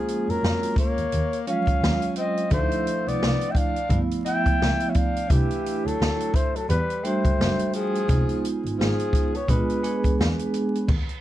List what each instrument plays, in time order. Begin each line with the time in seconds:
Already playing: tenor saxophone F3, vibraphone G#3 A#3 C#4 F4, flugelhorn G#4
0.08 closed hi-hat
0.29 double bass F2, tenor saxophone F#3, flugelhorn A#4, closed hi-hat
0.42 double bass F2, snare
0.63 closed hi-hat
0.76 tenor saxophone A#3, flugelhorn C#5, kick, closed hi-hat
0.98 double bass D#2, closed hi-hat
1.12 double bass D#2, closed hi-hat
1.33 closed hi-hat
1.46 vibraphone F3 G#3 C#4 F4, tenor saxophone C#4, flugelhorn F5, closed hi-hat
1.53 vibraphone F#3
1.67 double bass D#2, kick, closed hi-hat
1.81 double bass D#2, snare
2.02 closed hi-hat
2.16 tenor saxophone C4, flugelhorn D#5, closed hi-hat
2.37 closed hi-hat
2.51 double bass D2, vibraphone F3 A3 D4 D#4, tenor saxophone A3, flugelhorn C5, kick, closed hi-hat
2.59 vibraphone E4
2.71 closed hi-hat
2.87 closed hi-hat
3.07 double bass C2, tenor saxophone B3, flugelhorn D5, closed hi-hat
3.22 double bass C2, snare
3.41 closed hi-hat
3.49 tenor saxophone E4, flugelhorn G5
3.55 tenor saxophone D4, flugelhorn F5, kick, closed hi-hat
3.76 closed hi-hat
3.89 double bass G1, vibraphone F3 A3 B3 E4, kick, closed hi-hat
4.11 closed hi-hat
4.25 vibraphone F3 A3 B3 E4, tenor saxophone E4, flugelhorn G5, closed hi-hat
4.46 double bass C#2, kick, closed hi-hat
4.60 double bass C#2, snare
4.80 closed hi-hat
4.89 tenor saxophone C#4, flugelhorn E5
4.94 tenor saxophone D4, flugelhorn F5, kick, closed hi-hat
5.16 closed hi-hat
5.30 double bass C2, tenor saxophone E3, vibraphone A3 D4 E4, flugelhorn G4, kick, closed hi-hat
5.51 closed hi-hat
5.66 closed hi-hat
5.85 double bass D2, tenor saxophone F#3, flugelhorn A4, closed hi-hat
5.99 double bass D2, snare
6.20 closed hi-hat
6.34 tenor saxophone A3, flugelhorn C5, kick, closed hi-hat
6.55 tenor saxophone F#3, flugelhorn A4, closed hi-hat
6.69 double bass E2, tenor saxophone G3, flugelhorn B4, closed hi-hat
6.90 closed hi-hat
7.04 vibraphone G3 A3 D4 F#4, tenor saxophone A3, flugelhorn C5, closed hi-hat
7.25 double bass F#1, kick, closed hi-hat
7.39 double bass F#1, snare
7.59 closed hi-hat
7.73 tenor saxophone F3, flugelhorn G#4, closed hi-hat
7.95 closed hi-hat
8.09 double bass F1, vibraphone G#3 B3 D#4 F4, kick, closed hi-hat
8.29 closed hi-hat
8.45 closed hi-hat
8.65 double bass G#1, closed hi-hat
8.78 double bass G#1, tenor saxophone F3, flugelhorn G#4, snare
9.00 closed hi-hat
9.13 kick, closed hi-hat
9.34 tenor saxophone B3, flugelhorn C#5, closed hi-hat
9.48 double bass A#1, tenor saxophone G#3, vibraphone G#3 B3 D4 F4, flugelhorn B4, kick, closed hi-hat
9.70 closed hi-hat
9.83 vibraphone G#3 B3 D4 G#4, closed hi-hat
10.04 double bass E2, kick, closed hi-hat
10.19 double bass E2, snare
10.39 closed hi-hat
10.54 closed hi-hat
10.75 closed hi-hat
10.89 double bass D#2, kick, crash
11.09 closed hi-hat